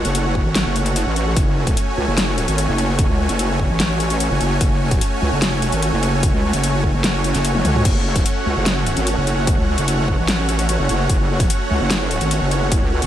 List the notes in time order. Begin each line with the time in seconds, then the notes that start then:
Already playing: A3 C#4 F#4 C#5 F#5
0.05 F#1, closed hi-hat
0.15 closed hi-hat
0.35 kick
0.45 G#1
0.55 snare, closed hi-hat
0.66 F#1
0.76 closed hi-hat
0.86 closed hi-hat
0.96 closed hi-hat
1.06 A1
1.16 closed hi-hat
1.36 F#1 G#5, kick, closed hi-hat
1.67 kick, closed hi-hat
1.77 closed hi-hat
1.97 C#2
2.08 F#1
2.18 snare, closed hi-hat
2.38 closed hi-hat
2.48 G#1, closed hi-hat
2.58 closed hi-hat
2.68 F#1
2.78 closed hi-hat
2.99 kick, closed hi-hat
3.09 C#2
3.29 F#1, closed hi-hat
3.39 closed hi-hat
3.60 kick
3.70 A1
3.80 snare, closed hi-hat
4.00 closed hi-hat
4.10 closed hi-hat
4.20 closed hi-hat
4.30 F#1
4.41 F#1, closed hi-hat
4.61 F#1, kick, closed hi-hat
4.91 kick, closed hi-hat
5.01 closed hi-hat
5.22 C#2
5.32 F#1
5.42 snare, closed hi-hat
5.62 closed hi-hat
5.72 G#1, closed hi-hat
5.82 closed hi-hat
5.93 F#1
6.03 closed hi-hat
6.23 kick, closed hi-hat
6.33 C#2
6.53 F#1, closed hi-hat
6.64 closed hi-hat
6.84 kick
6.94 F#1
7.04 snare, closed hi-hat
7.24 closed hi-hat
7.35 F#1, snare, closed hi-hat
7.45 closed hi-hat
7.55 high tom
7.65 C#2, closed hi-hat, mid tom
7.75 mid tom
7.85 F#1 F#5, kick, closed hi-hat, crash
8.16 kick, closed hi-hat
8.26 closed hi-hat
8.46 C#2
8.56 F#1
8.66 snare, closed hi-hat
8.86 closed hi-hat
8.97 G#1, closed hi-hat
9.07 closed hi-hat
9.17 F#1
9.27 closed hi-hat
9.47 kick, closed hi-hat
9.58 C#2
9.78 F#1, closed hi-hat
9.88 closed hi-hat
10.08 kick
10.18 A1
10.28 snare, closed hi-hat
10.49 closed hi-hat
10.59 closed hi-hat
10.69 closed hi-hat
10.79 F#1
10.89 F#1, closed hi-hat
11.10 F#1, kick, closed hi-hat
11.40 kick, closed hi-hat
11.50 closed hi-hat
11.70 C#2
11.80 F#1
11.91 snare, closed hi-hat
12.11 closed hi-hat
12.21 G#1, closed hi-hat
12.31 closed hi-hat
12.41 F#1
12.51 closed hi-hat
12.72 kick, closed hi-hat
12.82 C#2
13.02 F#1, closed hi-hat